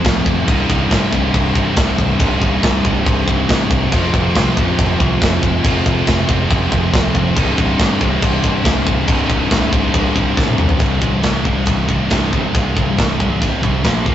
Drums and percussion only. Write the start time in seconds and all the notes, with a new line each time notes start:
0.05 kick, snare, crash
0.26 kick
0.48 kick, crash
0.70 kick
0.91 kick, snare, crash
1.13 kick
1.34 kick, crash
1.55 kick
1.76 kick, snare, crash
1.98 kick
2.19 kick, crash
2.42 kick
2.63 kick, snare, crash
2.85 kick
3.06 kick, crash
3.28 kick
3.49 kick, snare, crash
3.71 kick
3.92 kick, crash
4.14 kick
4.35 kick, snare, crash
4.57 kick
4.79 kick, crash
5.00 kick
5.22 kick, snare, crash
5.43 kick
5.64 kick, crash
5.86 kick
6.07 kick, snare, crash
6.29 kick
6.51 kick, crash
6.72 kick
6.94 kick, snare, crash
7.15 kick
7.37 kick, crash
7.58 kick
7.80 kick, snare, crash
8.01 kick
8.22 kick, crash
8.44 kick
8.65 kick, snare, crash
8.87 kick
9.07 kick, crash
9.30 kick
9.51 kick, snare, crash
9.73 kick
9.94 kick, crash
10.16 kick
10.37 kick, snare
10.48 high tom
10.58 mid tom
10.69 floor tom
10.79 kick, open hi-hat
11.02 kick
11.23 kick, snare, open hi-hat
11.45 kick
11.66 kick, open hi-hat
11.89 kick
12.10 kick, snare, open hi-hat
12.33 kick
12.55 kick, open hi-hat
12.77 kick
12.99 kick, snare, open hi-hat
13.20 kick
13.42 kick, open hi-hat
13.63 kick
13.84 kick, snare, open hi-hat
14.06 kick